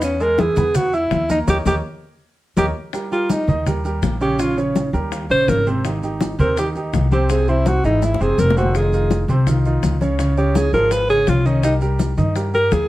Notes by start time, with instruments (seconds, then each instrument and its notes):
Already playing: upright bass E2, upright piano B3 B4 B5
0.02 alto saxophone C#4, high bongo, high conga, maracas
0.20 upright piano G#3 G#4 G#5, alto saxophone A#4, high conga, maracas
0.38 upright piano E3 E4 E5, alto saxophone G#4, high bongo, high conga, maracas
0.56 upright bass E2, upright piano B3 B4 B5, high bongo, high conga, low conga, maracas
0.75 alto saxophone F#4, high bongo, high conga, low conga, maracas
0.93 upright piano E4 E5 E6, alto saxophone E4, high bongo, high conga, maracas
1.11 upright bass D#2, high bongo, low bongo, high conga, maracas
1.29 upright piano A#3 A#4 A#5, alto saxophone D#4, high bongo, high conga, maracas
1.47 upright bass D#2, alto saxophone G4, upright piano A#4 C#5 D#5, low bongo, high conga, maracas
1.65 upright bass D#2, alto saxophone G4, upright piano A#4 C#5 D#5, low bongo, high conga, maracas
2.56 upright bass D#2, alto saxophone G4, upright piano A#4 C#5 D#5, low bongo, high conga, maracas
2.93 upright piano G3 G4 A#4, high bongo, high conga, maracas
3.11 upright piano G3 G4 A#4, alto saxophone F4, high conga, maracas
3.29 alto saxophone D#4, high bongo, high conga, maracas
3.47 upright bass D#2, upright piano D#3 D#4 D#5, high conga, low conga, maracas
3.66 upright piano G3 G4 A#4, high bongo, high conga, low conga, maracas
3.85 upright piano G3 G4 A#4, high conga, maracas
4.02 upright bass A#1, high bongo, low bongo, high conga, maracas
4.21 upright piano C#3 C#4 C#5, alto saxophone G4, maracas
4.39 upright piano C#3 C#4 C#5, alto saxophone F4, high bongo, high conga, maracas
4.57 upright piano C#3 C#4 C#5, high bongo, high conga, maracas
4.76 high bongo, high conga, maracas
4.93 upright bass D#2, upright piano G3 G4 A#4, maracas
5.12 high bongo, high conga, maracas
5.29 upright bass A#1, upright piano C#3 C#4 C#5, alto saxophone C5, high bongo, high conga, maracas
5.48 upright bass G#1, alto saxophone A#4, high bongo, low bongo, high conga, maracas
5.66 upright piano C3 C4 C5, high bongo, high conga, maracas
5.84 upright piano D#3 D#4 G4, high bongo, high conga, maracas
6.03 upright piano D#3 D#4 G4, high conga, maracas
6.21 high bongo, high conga, maracas
6.39 upright bass D#2, upright piano C3 C4 C5, alto saxophone A#4, high conga, low conga, maracas
6.57 upright piano D#3 D#4 G4, alto saxophone G4, high bongo, high conga, maracas
6.75 upright piano D#3 D#4 G4, high conga, maracas
6.93 upright bass C2, high bongo, low bongo, high conga, maracas
7.11 upright piano C3 C4 C5, alto saxophone G4, high conga, maracas
7.29 upright piano C3 C4 C5, alto saxophone G#4, high bongo, high conga, maracas
7.48 upright piano C3 C4 C5, alto saxophone E4, high bongo, high conga, maracas
7.66 alto saxophone F#4, high bongo, high conga, maracas
7.84 upright bass G#1, upright piano E3 E4 G#4, alto saxophone D#4, maracas
8.02 alto saxophone E4, high bongo, high conga, maracas
8.14 high bongo
8.20 upright bass F#1, upright piano C3 C4 C5, alto saxophone G#4, high conga, maracas
8.38 upright bass F1, alto saxophone A#4, low bongo, high conga, maracas
8.50 low bongo
8.57 upright piano C3 C4 C5, alto saxophone F#4, high conga, maracas
8.63 low bongo
8.75 upright piano D#3 D#4 F4, alto saxophone G#4, high bongo, high conga, maracas
8.93 upright piano D#3 D#4 F4, high conga, maracas
9.10 high bongo, high conga, maracas
9.28 upright bass C2, upright piano C3 C4 C5, high conga, low conga, maracas
9.47 upright piano D#3 D#4 F4, high bongo, high conga, low conga, maracas
9.65 upright piano D#3 D#4 F4, high conga, maracas
9.83 upright bass C#2, high bongo, low bongo, high conga, maracas
10.01 upright piano C#3 C#4 C#5, high conga, maracas
10.19 upright piano C#3 C#4 C#5, high bongo, high conga, maracas
10.37 upright piano C#3 C#4 C#5, alto saxophone G4, high bongo, high conga, maracas
10.55 alto saxophone G#4, high bongo, high conga, maracas
10.72 upright bass G#1, upright piano F3 F4 G#4, alto saxophone A#4, maracas
10.91 alto saxophone B4, high bongo, high conga, maracas
11.09 upright piano C#3 C#4 C#5, alto saxophone G#4, high bongo, high conga, maracas
11.27 upright bass C2, alto saxophone F4, high bongo, low bongo, high conga, maracas
11.45 upright piano D#3 D#4 D#5, alto saxophone C#4, high bongo, high conga, maracas
11.63 upright piano G3 G4 A#4, alto saxophone D#4, high bongo, high conga, maracas
11.81 upright piano G3 G4 A#4, high conga, maracas
11.99 high bongo, high conga, maracas
12.17 upright bass G2, upright piano D#3 D#4 D#5, high conga, low conga, maracas
12.35 upright piano G3 G4 A#4, high bongo, high conga, maracas
12.54 upright piano G3 G4 A#4, alto saxophone A#4, high conga, maracas
12.72 upright bass D#2, alto saxophone G#4, high bongo, low bongo, high conga, maracas